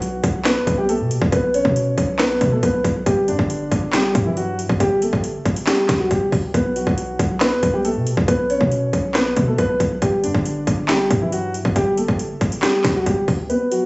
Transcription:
Already playing: 808-style bass B1, grand piano F#3 F#4
0.02 closed hi-hat
0.24 808-style bass B1, kick, closed hi-hat
0.44 grand piano B3 B4, snare, clap, closed hi-hat
0.56 808-style bass D2
0.67 808-style bass B1, kick, closed hi-hat
0.78 grand piano G3 G4
0.89 grand piano A3 A4, closed hi-hat
1.00 808-style bass B2
1.11 closed hi-hat
1.22 808-style bass B1, kick
1.32 808-style bass B1, grand piano B3 B4, kick, closed hi-hat
1.54 grand piano C#4 C#5, closed hi-hat
1.65 808-style bass B2, kick
1.76 closed hi-hat
1.98 808-style bass B1, kick, closed hi-hat
2.19 grand piano B3 B4, snare, clap, closed hi-hat
2.41 808-style bass B2, kick, closed hi-hat
2.52 grand piano A3 A4
2.63 808-style bass B1, grand piano B3 B4, kick, closed hi-hat
2.84 808-style bass B1, kick, closed hi-hat
3.06 808-style bass G1, grand piano G3 G4, kick, closed hi-hat
3.28 808-style bass G2, grand piano D3 D4, closed hi-hat
3.39 808-style bass G1, kick
3.50 closed hi-hat
3.72 808-style bass G1, kick, closed hi-hat
3.92 grand piano G3 G4, snare, clap, closed hi-hat
4.15 808-style bass G2, kick, closed hi-hat
4.26 grand piano E3 E4
4.37 grand piano F#3 F#4, closed hi-hat
4.59 closed hi-hat
4.69 808-style bass F#1, kick
4.80 808-style bass G1, grand piano G3 G4, kick, closed hi-hat
5.02 grand piano A3 A4, closed hi-hat
5.13 808-style bass G1, kick
5.24 closed hi-hat
5.35 808-style bass F#1
5.45 808-style bass G1, kick, closed hi-hat
5.56 closed hi-hat
5.67 grand piano G3 G4, snare, clap, closed hi-hat
5.88 808-style bass D2, kick, snare, clap, closed hi-hat
6.00 grand piano F#3 F#4
6.11 808-style bass G1, grand piano G3 G4, kick, closed hi-hat
6.32 808-style bass D2, kick, open hi-hat
6.54 808-style bass B1, grand piano B3 B4, kick, closed hi-hat
6.76 grand piano F#3 F#4, closed hi-hat
6.87 808-style bass B1, kick
6.98 closed hi-hat
7.19 808-style bass B1, kick, closed hi-hat
7.40 grand piano B3 B4, snare, clap, closed hi-hat
7.52 808-style bass D2
7.63 808-style bass B1, kick, closed hi-hat
7.74 grand piano G3 G4
7.85 grand piano A3 A4, closed hi-hat
7.95 808-style bass B2
8.07 closed hi-hat
8.17 808-style bass B1, kick
8.28 808-style bass B1, grand piano B3 B4, kick, closed hi-hat
8.50 grand piano C#4 C#5, closed hi-hat
8.61 808-style bass B2, kick
8.72 closed hi-hat
8.93 808-style bass B1, kick, closed hi-hat
9.14 grand piano B3 B4, snare, clap, closed hi-hat
9.36 808-style bass B2, kick, closed hi-hat
9.48 grand piano A3 A4
9.58 808-style bass B1, grand piano B3 B4, kick, closed hi-hat
9.80 808-style bass B1, kick, closed hi-hat
10.02 808-style bass G1, grand piano G3 G4, kick, closed hi-hat
10.24 808-style bass G2, grand piano D3 D4, closed hi-hat
10.35 808-style bass G1, kick
10.46 closed hi-hat
10.67 808-style bass G1, kick, closed hi-hat
10.88 grand piano G3 G4, snare, clap, closed hi-hat
11.11 808-style bass G2, kick, closed hi-hat
11.21 grand piano E3 E4
11.32 grand piano F#3 F#4, closed hi-hat
11.54 closed hi-hat
11.65 808-style bass F#1, kick
11.76 808-style bass G1, grand piano G3 G4, kick, closed hi-hat
11.97 grand piano A3 A4, closed hi-hat
12.08 808-style bass G1, kick
12.19 closed hi-hat
12.30 808-style bass F#1
12.41 808-style bass G1, kick, closed hi-hat
12.52 closed hi-hat
12.62 grand piano G3 G4, snare, clap, closed hi-hat
12.84 808-style bass D2, kick, snare, clap, closed hi-hat
12.95 grand piano F#3 F#4
13.06 808-style bass G1, grand piano G3 G4, kick, closed hi-hat
13.28 808-style bass D2, kick, open hi-hat
13.50 grand piano B3 B4, closed hi-hat
13.71 grand piano F#3 F#4, closed hi-hat

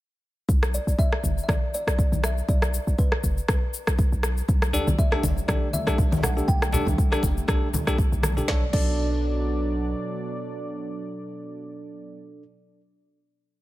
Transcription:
0.49 808-style bass B1, kick, shaker
0.63 cross-stick, shaker
0.74 kalimba D5, shaker
0.87 808-style bass B1, shaker
0.99 kalimba E5, kick, shaker
1.13 cross-stick
1.24 808-style bass F#1, kick, mid tom, shaker
1.38 shaker
1.44 kalimba E5
1.48 808-style bass B1, kalimba D5, kick, cross-stick, mid tom, shaker
1.74 kalimba D5, shaker
1.87 808-style bass B1, cross-stick, shaker
1.99 kick, shaker
2.12 808-style bass B1, mid tom, shaker
2.24 kalimba E5, cross-stick, shaker
2.38 shaker
2.49 808-style bass B1, kalimba D5, kick, shaker
2.62 cross-stick, shaker
2.74 shaker
2.87 808-style bass B1, shaker
2.98 kalimba B4, kick, shaker
3.12 cross-stick
3.24 808-style bass F#1, kick, shaker
3.38 shaker
3.48 808-style bass B1, kalimba B4, kick, cross-stick, shaker
3.74 shaker
3.87 808-style bass B1, cross-stick, shaker
3.99 kick, shaker
4.12 808-style bass B1, shaker
4.23 cross-stick, shaker
4.38 shaker
4.48 808-style bass B1, analog synth pad D3 G3 A3, kick, djembe tone, shaker
4.62 cross-stick, shaker
4.73 tine electric piano D4 G4 A4, kalimba D5, djembe bass, shaker
4.87 808-style bass B1, djembe tone, high conga, shaker
4.98 kalimba E5, kick, shaker
5.12 tine electric piano D4 G4 A4, cross-stick, djembe tone
5.23 808-style bass F#1, kick, mid tom, djembe slap, djembe bass, shaker
5.37 djembe tone, shaker
5.48 808-style bass B1, tine electric piano D4 G4 A4, kalimba D5, kick, cross-stick, mid tom, shaker
5.73 kalimba E5, high conga, djembe tone, shaker
5.87 808-style bass B1, tine electric piano D4 G4 A4, cross-stick, shaker
5.98 kick, djembe tone, low conga, shaker
6.12 808-style bass B1, mid tom, djembe slap, high conga, shaker
6.22 kalimba F#5, cross-stick, djembe tone, low conga, shaker
6.37 tine electric piano D4 G4 A4, shaker
6.48 808-style bass B1, kalimba G5, kick, shaker
6.62 cross-stick, djembe tone, shaker
6.72 tine electric piano D4 G4 A4, djembe slap, djembe bass, low conga, shaker
6.87 808-style bass B1, djembe tone, high conga, shaker
6.98 kick, shaker
7.12 tine electric piano D4 G4 A4, cross-stick, djembe tone, shaker
7.23 808-style bass F#1, kick, djembe slap, djembe bass, shaker
7.38 shaker
7.48 808-style bass B1, tine electric piano D4 G4 A4, kick, cross-stick, djembe tone, shaker
7.74 high conga, djembe tone, low conga, shaker
7.87 808-style bass B1, tine electric piano D4 G4 A4, cross-stick, shaker
7.98 kick, djembe tone, shaker
8.12 808-style bass B1, shaker
8.23 cross-stick, high conga, shaker
8.37 tine electric piano D4 G4 A4, djembe tone, low conga, shaker
8.48 808-style bass B1, analog synth pad B2 F#3 D4 D5, tine electric piano D4 A4 C#5, kalimba D5, kick, snare
8.73 808-style bass B1, tine electric piano D4 A4 D5, kalimba D5, kick, crash

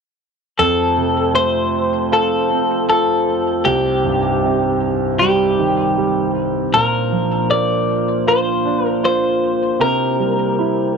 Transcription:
0.56 grand piano F2, glass harmonica A3 C4 F4 C5, clean electric guitar A4
0.97 grand piano C3
1.34 grand piano A3, clean electric guitar C5
2.12 grand piano F4, clean electric guitar A4
2.50 grand piano C4
2.90 grand piano F4, clean electric guitar A4
3.65 grand piano C2, glass harmonica G3 D#4, clean electric guitar G4
4.05 grand piano G2
4.44 grand piano C3
5.19 grand piano G3, clean electric guitar G4
5.59 grand piano D#3
5.97 grand piano G3
6.73 grand piano A#2, glass harmonica A#3 D4 F4, clean electric guitar A#4
7.12 grand piano F3
7.51 grand piano A#3, clean electric guitar D5
8.27 grand piano F4, clean electric guitar C5
8.65 grand piano D4
8.86 clean electric guitar A#4
9.03 grand piano F4, clean electric guitar C5
9.80 grand piano C3, glass harmonica E4 G4, clean electric guitar A#4
10.19 grand piano G3
10.59 grand piano E4

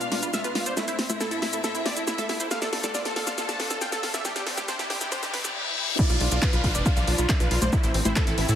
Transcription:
Already playing: string section B2 B3 D4 F4 F5, riser
0.01 synth pluck D4, supersaw synth F5, closed hi-hat, shaker
0.12 synth pluck D4, supersaw synth F4, snare, open hi-hat
0.23 supersaw synth F4, synth pluck B5, closed hi-hat, shaker
0.33 supersaw synth E5, synth pluck F5, snare, closed hi-hat, shaker
0.44 supersaw synth F4, synth pluck B4, closed hi-hat, shaker
0.55 supersaw synth F4, synth pluck F5, snare, open hi-hat
0.66 supersaw synth C5, synth pluck D5, closed hi-hat, shaker
0.77 string section A2 A3 C4 E4 E5, synth pluck A3, supersaw synth E4, snare, closed hi-hat, shaker
0.88 supersaw synth E4, synth pluck C5, closed hi-hat, shaker
0.99 synth pluck C4, snare, open hi-hat
1.10 supersaw synth E4, synth pluck C5, closed hi-hat, high conga, shaker
1.20 synth pluck E4, supersaw synth A4, snare, closed hi-hat, shaker
1.31 supersaw synth E4, synth pluck A4, closed hi-hat, shaker
1.42 supersaw synth E4, synth pluck E5, snare, open hi-hat
1.53 supersaw synth E4, synth pluck A4, closed hi-hat, shaker
1.64 synth pluck E4, supersaw synth A4, snare, closed hi-hat, shaker
1.75 synth pluck C4, supersaw synth E4, closed hi-hat, shaker
1.86 synth pluck C4, supersaw synth D5, snare, open hi-hat
1.97 supersaw synth E4, synth pluck A5, closed hi-hat, shaker
2.07 supersaw synth E4, synth pluck E5, snare, closed hi-hat, shaker
2.18 synth pluck A4, supersaw synth E5, closed hi-hat, high conga, shaker
2.29 supersaw synth E4, synth pluck E5, snare, open hi-hat
2.40 supersaw synth E4, synth pluck C5, closed hi-hat, shaker
2.51 string section D2 D3 F4 A4, synth pluck A3, supersaw synth F5, snare, closed hi-hat, shaker
2.62 supersaw synth A4, synth pluck D5, snare, closed hi-hat, shaker
2.73 synth pluck D4, supersaw synth A4, snare, open hi-hat
2.84 supersaw synth A4, synth pluck D5, snare, closed hi-hat, high conga, shaker
2.94 synth pluck F4, supersaw synth D5, snare, closed hi-hat, shaker
3.05 synth pluck A4, supersaw synth A4, snare, closed hi-hat, shaker
3.16 supersaw synth A4, synth pluck F5, snare, open hi-hat
3.27 synth pluck A4, supersaw synth F5, snare, closed hi-hat, shaker
3.38 synth pluck F4, supersaw synth A4, snare, closed hi-hat, shaker
3.49 synth pluck D4, supersaw synth A5, snare, closed hi-hat, shaker
3.60 synth pluck D4, supersaw synth A4, snare, open hi-hat
3.71 supersaw synth A4, synth pluck A5, snare, closed hi-hat, shaker
3.81 synth pluck F5, supersaw synth G5, snare, closed hi-hat, shaker
3.92 synth pluck A4, supersaw synth A4, snare, closed hi-hat, shaker
4.03 supersaw synth A4, synth pluck F5, snare, open hi-hat
4.14 synth pluck D5, supersaw synth E5, snare, closed hi-hat, shaker
4.25 string section C2 C3 D4 E4 G4, synth pluck G3, supersaw synth G4, snare, closed hi-hat, shaker
4.36 synth pluck G4, supersaw synth G4, snare, closed hi-hat, shaker
4.47 synth pluck C4, snare, open hi-hat
4.58 synth pluck G4, supersaw synth G4, snare, closed hi-hat, high conga, shaker
4.68 synth pluck D4, supersaw synth C5, snare, closed hi-hat, shaker
4.79 synth pluck E4, supersaw synth G4, snare, closed hi-hat, shaker
4.90 supersaw synth G4, synth pluck C5, snare, open hi-hat
5.01 synth pluck E4, supersaw synth G4, snare, closed hi-hat, shaker
5.12 synth pluck D4, supersaw synth C5, snare, closed hi-hat, reverse cymbal, shaker
5.23 synth pluck C4, supersaw synth G4, snare, closed hi-hat, shaker
5.34 synth pluck C4, supersaw synth B4, snare, open hi-hat
5.45 supersaw synth G4, synth pluck D5, snare, closed hi-hat, shaker
5.99 string section F3 B3 D4, synth pluck B3, supersaw synth D5, kick, closed hi-hat, crash, downlifter, shaker
6.10 analog synth bass B1, supersaw synth F4, synth pluck D5, closed hi-hat, shaker
6.20 analog synth bass B1, synth pluck D4, supersaw synth F4, open hi-hat
6.31 analog synth bass B1, supersaw synth F4, synth pluck D5, closed hi-hat, shaker
6.42 synth pluck F4, supersaw synth B4, kick, clap, closed hi-hat, shaker
6.53 analog synth bass B1, supersaw synth F4, synth pluck B4, closed hi-hat, shaker
6.64 analog synth bass B1, supersaw synth F4, synth pluck F5, kick, open hi-hat
6.75 analog synth bass F1, synth pluck B4, supersaw synth D5, closed hi-hat, shaker
6.86 supersaw synth F4, synth pluck F4, kick, closed hi-hat, shaker
6.97 analog synth bass B1, synth pluck D4, supersaw synth F5, closed hi-hat, shaker
7.07 analog synth bass B1, synth pluck D4, supersaw synth F4, open hi-hat
7.18 analog synth bass B1, supersaw synth F4, synth pluck B5, closed hi-hat, shaker
7.29 supersaw synth E5, synth pluck F5, kick, clap, closed hi-hat, shaker
7.40 analog synth bass B1, supersaw synth F4, synth pluck B4, closed hi-hat, shaker
7.51 analog synth bass B1, supersaw synth F4, synth pluck F5, open hi-hat
7.62 analog synth bass B1, supersaw synth C5, synth pluck D5, closed hi-hat, high conga, shaker
7.73 string section E3 A3 C4, synth pluck A3, supersaw synth E4, kick, closed hi-hat, shaker
7.84 analog synth bass A1, supersaw synth E4, synth pluck C5, closed hi-hat, shaker
7.94 analog synth bass A1, synth pluck C4, open hi-hat
8.05 analog synth bass A1, supersaw synth E4, synth pluck C5, closed hi-hat, high conga, shaker
8.16 synth pluck E4, supersaw synth A4, kick, clap, closed hi-hat, shaker
8.27 analog synth bass A1, supersaw synth E4, synth pluck A4, closed hi-hat, shaker
8.38 analog synth bass A1, supersaw synth E4, synth pluck E5, open hi-hat
8.49 analog synth bass A2, supersaw synth E4, synth pluck A4, open hi-hat, shaker

